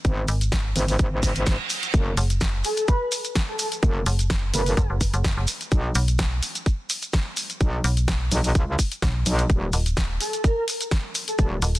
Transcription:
0.05 G#1, kick, closed hi-hat, maracas
0.28 G#1, open hi-hat, maracas
0.41 closed hi-hat, maracas
0.52 kick, snare, closed hi-hat, maracas
0.76 G#1, open hi-hat, maracas
0.88 open hi-hat, maracas
0.99 G#1, kick, closed hi-hat, reverse cymbal, maracas
1.23 kick, open hi-hat, maracas
1.35 G#1, closed hi-hat, maracas
1.46 kick, snare, closed hi-hat, maracas
1.70 open hi-hat, maracas
1.83 closed hi-hat, maracas
1.94 F#1, kick, closed hi-hat, maracas
2.17 F#1, open hi-hat, maracas
2.30 closed hi-hat, maracas
2.41 kick, snare, closed hi-hat, maracas
2.64 A4, open hi-hat, maracas
2.77 closed hi-hat, maracas
2.88 B4, kick, closed hi-hat, maracas
3.12 open hi-hat, maracas
3.24 closed hi-hat, maracas
3.35 kick, snare, closed hi-hat, maracas
3.48 A4
3.59 A4, open hi-hat, maracas
3.72 closed hi-hat, maracas
3.83 F#1, kick, closed hi-hat, maracas
4.06 F#1, open hi-hat, maracas
4.19 closed hi-hat, maracas
4.30 kick, snare, closed hi-hat, maracas
4.54 F#1 B4, open hi-hat, maracas
4.66 open hi-hat, maracas
4.77 F#1, kick, closed hi-hat, maracas
4.90 F#1
5.01 kick, open hi-hat, maracas
5.13 F#1, closed hi-hat, maracas
5.24 kick, snare, closed hi-hat, maracas
5.37 F#1
5.47 open hi-hat, maracas
5.61 closed hi-hat, maracas
5.71 B1, kick, closed hi-hat, maracas
5.95 B1, open hi-hat, maracas
6.08 closed hi-hat, maracas
6.18 kick, snare, closed hi-hat, maracas
6.43 open hi-hat, maracas
6.55 closed hi-hat, maracas
6.66 kick, closed hi-hat, maracas
6.90 open hi-hat, maracas
7.02 closed hi-hat, maracas
7.13 kick, snare, closed hi-hat, maracas
7.37 open hi-hat, maracas
7.50 closed hi-hat, maracas
7.61 B1, kick, closed hi-hat, maracas
7.84 B1, open hi-hat, maracas
7.97 closed hi-hat, maracas
8.08 kick, snare, closed hi-hat, maracas
8.31 B1, open hi-hat, maracas
8.44 open hi-hat, maracas
8.55 C#2, kick, closed hi-hat, maracas
8.79 kick, open hi-hat, maracas
8.92 closed hi-hat, maracas
9.02 B1, kick, snare, closed hi-hat, maracas
9.26 B1, open hi-hat, maracas
9.39 closed hi-hat, maracas
9.50 D#1, kick, closed hi-hat, maracas
9.73 D#1, open hi-hat, maracas
9.86 closed hi-hat, maracas
9.97 kick, snare, closed hi-hat, maracas
10.21 A4, open hi-hat, maracas
10.33 closed hi-hat, maracas
10.44 A#4, kick, closed hi-hat, maracas
10.68 open hi-hat, maracas
10.81 closed hi-hat, maracas
10.91 kick, snare, closed hi-hat, maracas
11.15 open hi-hat, maracas
11.28 A4, closed hi-hat, maracas
11.38 D#1 A4, kick, closed hi-hat, maracas
11.62 D#1, open hi-hat, maracas
11.75 closed hi-hat, maracas

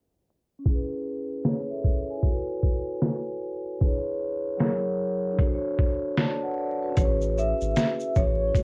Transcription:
0.59 C#4
0.64 E4, kick, closed hi-hat
0.69 G#4
0.75 B4
1.44 G#4 C#5, snare, closed hi-hat
1.70 A4 E5
1.84 kick
2.10 C#5 G#5
2.17 E4
2.22 F#4, kick, closed hi-hat
2.27 A4
2.33 B4
2.63 kick
3.02 snare, closed hi-hat
3.79 D4 G#4, kick, closed hi-hat
3.84 E4 B4 C#5
4.57 F#3 E4 G#4, snare, closed hi-hat
4.63 A#4 C#5
5.32 D4
5.37 F#4, kick, closed hi-hat
5.42 A4
5.48 C5
5.54 C#5
5.79 kick
6.18 D5 A5, snare, closed hi-hat
6.43 B4 F#5
6.58 A4 D5
6.83 F#4 B4
6.90 C#4
6.95 A1 E4 C#5, kick, closed hi-hat, shaker
7.00 G#4
7.06 B4
7.21 shaker
7.38 E5, shaker
7.61 G#1, shaker
7.76 snare, closed hi-hat, shaker
8.00 shaker
8.15 A1 C#5, kick, shaker
8.48 E4
8.53 D2 F#4, kick, closed hi-hat, shaker
8.58 A4

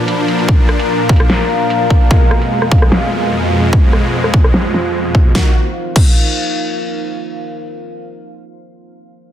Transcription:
Already playing: A#2 F3 D4 A#4 F5 A#5
0.08 closed hi-hat
0.28 closed hi-hat
0.39 closed hi-hat
0.49 kick, closed hi-hat
0.69 cross-stick, closed hi-hat
0.79 closed hi-hat
1.09 kick, closed hi-hat
1.13 closed hi-hat
1.16 cross-stick, closed hi-hat
1.30 snare, closed hi-hat
1.50 closed hi-hat
1.70 closed hi-hat
1.90 kick, closed hi-hat
2.01 closed hi-hat
2.11 F2 B2 G#3 F4, kick, closed hi-hat
2.31 cross-stick, closed hi-hat
2.42 C5, closed hi-hat
2.62 cross-stick
2.72 kick, closed hi-hat
2.75 closed hi-hat
2.78 cross-stick, closed hi-hat
2.92 snare, closed hi-hat
3.12 closed hi-hat
3.32 closed hi-hat
3.53 closed hi-hat
3.63 closed hi-hat
3.73 kick
3.93 cross-stick, closed hi-hat
4.04 closed hi-hat
4.24 cross-stick
4.34 kick, closed hi-hat
4.37 closed hi-hat
4.40 cross-stick, closed hi-hat
4.54 snare, closed hi-hat
4.74 snare, closed hi-hat
4.95 closed hi-hat
5.15 kick
5.25 closed hi-hat
5.35 D#3 A#3 D#4 F#4, kick, snare
5.41 A#4
5.48 F5
5.96 kick, crash

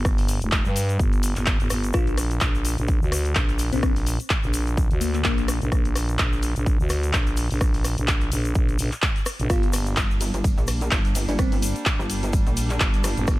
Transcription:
Already playing: G1
0.05 kick, cross-stick, shaker
0.18 open hi-hat, shaker
0.28 open hi-hat, shaker
0.42 F1, closed hi-hat, shaker
0.52 kick, clap, shaker
0.65 G2, shaker
0.76 open hi-hat, shaker
0.89 closed hi-hat, shaker
0.99 G1, kick, shaker
1.13 closed hi-hat, shaker
1.23 open hi-hat, shaker
1.36 G1, clap, closed hi-hat, shaker
1.46 kick, clap, shaker
1.60 G1, closed hi-hat, shaker
1.70 G1, cross-stick, open hi-hat, shaker
1.84 closed hi-hat, shaker
1.93 A#1 F4, kick, cross-stick, shaker
2.07 closed hi-hat, shaker
2.17 cross-stick, open hi-hat, shaker
2.31 closed hi-hat, shaker
2.41 A#1, kick, clap, shaker
2.55 shaker
2.65 open hi-hat, shaker
2.78 A#1, closed hi-hat, shaker
2.88 kick, shaker
3.02 D2, shaker
3.12 cross-stick, open hi-hat, shaker
3.25 closed hi-hat, shaker
3.35 A#1, kick, clap, shaker
3.49 closed hi-hat, shaker
3.59 open hi-hat, shaker
3.72 A#1 C4, open hi-hat, shaker
3.83 C4, kick, cross-stick, shaker
3.96 open hi-hat, shaker
4.06 open hi-hat, shaker
4.20 closed hi-hat, shaker
4.30 kick, clap, shaker
4.43 A#1, shaker
4.54 open hi-hat, shaker
4.67 closed hi-hat, shaker
4.77 kick, shaker
4.91 D2, closed hi-hat, shaker
5.01 A#3, open hi-hat, shaker
5.14 A#3, clap, closed hi-hat, shaker
5.24 A#1 A#3, kick, clap, shaker
5.38 closed hi-hat, shaker
5.48 cross-stick, open hi-hat, shaker
5.62 A#1, closed hi-hat, shaker
5.72 A#1, kick, cross-stick, shaker
5.85 closed hi-hat, shaker
5.96 cross-stick, open hi-hat, shaker
6.09 closed hi-hat, shaker
6.19 A#1, kick, clap, shaker
6.33 shaker
6.43 open hi-hat, shaker
6.56 A#1, closed hi-hat, shaker
6.66 kick, shaker
6.80 D2, shaker
6.89 cross-stick, open hi-hat, shaker
7.03 closed hi-hat, shaker
7.13 A#1, kick, clap, shaker
7.27 closed hi-hat, shaker
7.37 open hi-hat, shaker
7.51 A#1, open hi-hat, shaker
7.61 kick, cross-stick, shaker
7.74 open hi-hat, shaker
7.84 cross-stick, open hi-hat, shaker
7.98 A#1, closed hi-hat, shaker
8.08 kick, clap, shaker
8.21 closed hi-hat, shaker
8.32 A#1, open hi-hat, shaker
8.45 closed hi-hat, shaker
8.55 A#1, kick, shaker
8.69 closed hi-hat, shaker
8.78 A#1, open hi-hat, shaker
8.92 clap, closed hi-hat, shaker
9.02 kick, clap, shaker
9.16 closed hi-hat, shaker
9.26 cross-stick, open hi-hat, shaker
9.39 A#1, closed hi-hat, shaker
9.50 G1 G3 A#3 D4 F4, kick, cross-stick, ride, shaker
9.63 closed hi-hat, shaker
9.73 cross-stick, open hi-hat, ride, shaker
9.86 closed hi-hat, shaker
9.97 G1, kick, clap, ride, shaker
10.11 shaker
10.21 open hi-hat, ride, shaker
10.34 G1, closed hi-hat, shaker
10.44 kick, ride, shaker
10.58 A#1, shaker
10.67 cross-stick, open hi-hat, ride, shaker
10.81 closed hi-hat, shaker
10.91 G1, kick, clap, ride, shaker
11.05 closed hi-hat, shaker
11.15 open hi-hat, ride, shaker
11.28 G1 D4, open hi-hat, shaker
11.39 C4, kick, cross-stick, ride, shaker
11.52 open hi-hat, shaker
11.62 open hi-hat, ride, shaker
11.76 closed hi-hat, shaker
11.86 kick, clap, ride, shaker
11.99 G1, shaker
12.10 open hi-hat, ride, shaker
12.23 closed hi-hat, shaker
12.33 kick, ride, shaker
12.47 A#1, closed hi-hat, shaker
12.57 open hi-hat, ride, shaker
12.70 clap, closed hi-hat, shaker
12.80 G1, kick, clap, ride, shaker
12.94 closed hi-hat, shaker
13.04 cross-stick, open hi-hat, ride, shaker
13.17 G1, closed hi-hat, shaker
13.27 G1, kick, cross-stick, ride, shaker

